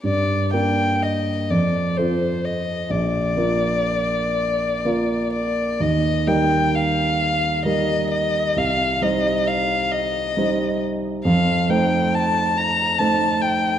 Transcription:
<<
  \new Staff \with { instrumentName = "Violin" } { \time 6/8 \key f \mixolydian \tempo 4. = 44 d''8 g''8 ees''8 d''8 c''8 ees''8 | d''2~ d''8 d''8 | ees''8 g''8 f''4 ees''8 ees''8 | f''8 ees''8 f''8 ees''4 r8 |
f''8 g''8 a''8 bes''8 a''8 g''8 | }
  \new Staff \with { instrumentName = "Grand piano" } { \time 6/8 \key f \mixolydian g,8 <bes d' bes'>4 f,8 <c' f' a'>4 | bes,,8 <bes f' bes'>4. <bes f' bes'>4 | ees,8 <g ees' bes'>4. <g ees' bes'>4 | c,8 <g ees' c''>4. <g ees' c''>4 |
f,8 <a ees' c''>4. <a ees' c''>4 | }
>>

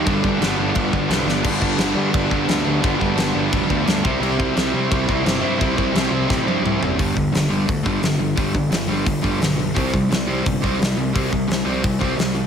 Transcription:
<<
  \new Staff \with { instrumentName = "Distorted electric guitar" } { \clef bass \time 4/4 \key g \major \tempo 4 = 173 <g, d g b d'>4 <g, d g b d'>8 <g, d g b d'>8 <g, d g b d'>4 <g, d g b d'>8 <g, d g b d'>8 | <g, d g b d'>1 | <g, d g b d'>2.~ <g, d g b d'>8 <c g c' e'>8~ | <c g c' e'>2.~ <c g c' e'>8 <c g c' e'>8~ |
<c g c' e'>2.~ <c g c' e'>8 r8 | \key c \lydian r1 | r1 | r1 |
r1 | }
  \new Staff \with { instrumentName = "Overdriven electric guitar" } { \clef bass \time 4/4 \key g \major <g, d g b d'>4 <g, d g b d'>8 <g, d g b d'>8 <g, d g b d'>4 <g, d g b d'>8 <g, d g b d'>8 | <g, d g b d'>8 <g, d g b d'>8 <g, d g b d'>8 <g, d g b d'>8 <g, d g b d'>8 <g, d g b d'>8 <g, d g b d'>8 <g, d g b d'>8 | <g, d g b d'>8 <g, d g b d'>8 <g, d g b d'>8 <g, d g b d'>8 <g, d g b d'>8 <g, d g b d'>8 <g, d g b d'>8 <c g c' e'>8 | <c g c' e'>8 <c g c' e'>8 <c g c' e'>8 <c g c' e'>8 <c g c' e'>8 <c g c' e'>8 <c g c' e'>8 <c g c' e'>8 |
<c g c' e'>8 <c g c' e'>8 <c g c' e'>8 <c g c' e'>8 <c g c' e'>8 <c g c' e'>8 <c g c' e'>8 <c g c' e'>8 | \key c \lydian <g, d g>8 <g, d>8 <g, d>8 <g, d g>8 <g, d>8 <g, d g>8 <g, d>8 <g, d>8 | <g, d g>8 <g, d>8 <g, d>8 <g, d g>8 <g, d>8 <g, d g>8 <g, d>8 <g, d>8 | <c g c'>8 <c g>8 <c g>8 <c g c'>8 <c g>8 <c g c'>8 <c g>8 <c g>8 |
<c g c'>8 <c g>8 <c g>8 <c g c'>8 <c g>8 <c g c'>8 <c g>8 <c g>8 | }
  \new Staff \with { instrumentName = "Overdriven electric guitar" } { \clef bass \time 4/4 \key g \major <g, d g>4 <g, d g>8 <g, d g>8 <g, d g>4 <g, d g>8 <g, d g>8 | <g, d g>8 <g, d g>8 <g, d g>8 <g, d g>8 <g, d g>8 <g, d g>8 <g, d g>8 <g, d g>8 | <g, d g>8 <g, d g>8 <g, d g>8 <g, d g>8 <g, d g>8 <g, d g>8 <g, d g>8 <c g c'>8 | <c g c'>8 <c g c'>8 <c g c'>8 <c g c'>8 <c g c'>8 <c g c'>8 <c g c'>8 <c g c'>8 |
<c g c'>8 <c g c'>8 <c g c'>8 <c g c'>8 <c g c'>8 <c g c'>8 <c g c'>8 <c g c'>8 | \key c \lydian <g, d g>8 <g, d>8 <g, d>8 <g, d g>8 <g, d>8 <g, d g>8 <g, d>8 <g, d>8 | <g, d g>8 <g, d>8 <g, d>8 <g, d g>8 <g, d>8 <g, d g>8 <g, d>8 <g, d>8 | <c g c'>8 <c g>8 <c g>8 <c g c'>8 <c g>8 <c g c'>8 <c g>8 <c g>8 |
<c g c'>8 <c g>8 <c g>8 <c g c'>8 <c g>8 <c g c'>8 <c g>8 <c g>8 | }
  \new Staff \with { instrumentName = "Picked electric bass" } { \clef bass \time 4/4 \key g \major g,,8 g,,8 g,,8 g,,8 g,,8 g,,8 c,8 g,,8 | g,,4 g,,8 g,8 g,,8 g,,8 d,8 d,8 | g,,8 g,,8 g,,8 g,,8 f,,8 d,8 d,8 c,8 | c,4 c,8 c8 c,8 c,8 g,,8 g,8 |
c,8 c,8 c,8 c,8 a,,8 g,8 c,8 fis,,8 | \key c \lydian g,,8 g,,8 g,,4 d,8 g,,8 g,,8 g,,8 | g,,4 g,,8 g,,8 g,,8 g,,8 b,,4 | c,8 c,8 c,4 g,,8 c,8 c,8 c,8 |
c,4 c,8 c,8 c,8 c,8 c,4 | }
  \new DrumStaff \with { instrumentName = "Drums" } \drummode { \time 4/4 <cymc bd>8 bd8 <cymc sn>4 <cymc bd>8 bd8 <cymc sn>8 sn8 | <cymc bd>8 bd8 <cymc sn>4 <cymc bd>8 bd8 <cymc sn>4 | <cymc bd>8 bd8 <cymc sn>4 <cymc bd>8 bd8 <cymc sn>8 bd8 | cymc8 bd8 <cymc sn>4 <cymc bd>8 bd8 <cymc sn>4 |
<cymc bd>8 bd8 <cymc sn>4 <bd sn>8 tommh8 toml8 tomfh8 | <hho bd>8 bd8 <hho sn>4 <hho bd>8 bd8 <hho sn>4 | <hho bd>8 bd8 <hho sn>4 <hho bd>8 bd8 <hho sn>4 | <hho bd>8 bd8 <hho sn>4 <hho bd>8 bd8 <hho sn>4 |
<hho bd>8 bd8 <hho sn>4 <hho bd>8 bd8 <hho sn>4 | }
>>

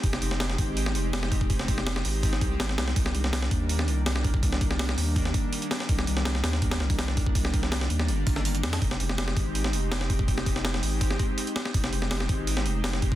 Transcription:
<<
  \new Staff \with { instrumentName = "Analog synth pad" } { \time 4/4 \key f \dorian \tempo 4 = 164 <aes c' ees' g'>4. <aes c' ees' g'>4~ <aes c' ees' g'>16 <aes c' ees' g'>4~ <aes c' ees' g'>16 | <aes c' ees' g'>4. <aes c' ees' g'>4~ <aes c' ees' g'>16 <aes c' ees' g'>8. <aes c' ees' g'>8 | <ees g bes d'>4. <ees g bes d'>4~ <ees g bes d'>16 <ees g bes d'>4~ <ees g bes d'>16 | <ees g bes d'>4. <ees g bes d'>4~ <ees g bes d'>16 <ees g bes d'>4~ <ees g bes d'>16 |
<ees g bes d'>4. <ees g bes d'>4~ <ees g bes d'>16 <ees g bes d'>4~ <ees g bes d'>16 | <ees g bes d'>4. <ees g bes d'>4~ <ees g bes d'>16 <ees g bes d'>4~ <ees g bes d'>16 | <aes c' ees' g'>4. <aes c' ees' g'>4~ <aes c' ees' g'>16 <aes c' ees' g'>4~ <aes c' ees' g'>16 | <aes c' ees' g'>4. <aes c' ees' g'>4~ <aes c' ees' g'>16 <aes c' ees' g'>4~ <aes c' ees' g'>16 |
<aes c' ees' g'>4. <aes c' ees' g'>4~ <aes c' ees' g'>16 <aes c' ees' g'>4~ <aes c' ees' g'>16 | }
  \new Staff \with { instrumentName = "Sub bass" } { \clef bass \time 4/4 \key f \dorian f,,8 f,,4 aes,,4 f,,4. | f,,8 f,,4 aes,,4 c,8 aes,,8 c,8 | c,8 c,4 ees,4 c,4. | c,8 c,4 ees,4 r4. |
c,8 c,4 ees,4 c,4. | c,8 c,4 ees,8 g,,8 g,,4 f,8 | f,,8 f,,4 aes,,4 f,,4. | f,,8 f,,4 aes,,4 r4. |
f,,8 f,,4 aes,,4 f,,4. | }
  \new DrumStaff \with { instrumentName = "Drums" } \drummode { \time 4/4 <hho bd>16 sn16 hho16 sn16 <hho sn>16 sn16 <hho bd>8 hho16 sn16 hho8 <hho sn>16 sn16 <hho bd>16 bd16 | <hho bd>16 sn16 <hho bd>16 sn16 <hho sn>16 sn16 hho8 <hho bd>16 sn16 <hho bd>8 <hho sn>16 sn16 <hho sn>16 sn16 | <hho bd>16 sn16 hho16 sn16 <hho sn>16 sn16 <hho bd>8 hho16 sn16 hho8 <hho sn>16 sn16 <hho bd>16 bd16 | <hho bd>16 sn16 <hho bd>16 sn16 <hho sn>16 sn16 hho8 <hho bd>16 sn16 <hho bd>8 hho16 hh16 <hho sn>16 sn16 |
<hho bd>16 sn16 hho16 sn16 <hho sn>16 sn16 <hho sn>16 sn16 <hho bd>16 <hho sn>16 sn16 <hho bd>16 <hho sn>16 sn16 <hho bd>16 bd16 | <hho bd>16 sn16 <hho bd>16 sn16 <hho sn>16 sn16 hho16 sn16 hho8 <hho bd>16 sn16 hho16 hh16 <hho sn>16 <hho sn>16 | <hho bd>16 sn16 hho16 sn16 <hho sn>16 sn16 <hho bd>8 hho16 sn16 hho8 <hho sn>16 sn16 <hho bd>16 bd16 | <hho bd>16 sn16 <hho bd>16 sn16 <hho sn>16 sn16 hho8 <hho bd>16 sn16 <hho bd>8 hho16 hh16 <hho sn>16 sn16 |
<hho bd>16 sn16 hho16 sn16 <hho sn>16 sn16 <hho bd>8 hho16 sn16 hho8 <hho sn>16 sn16 <hho bd>16 bd16 | }
>>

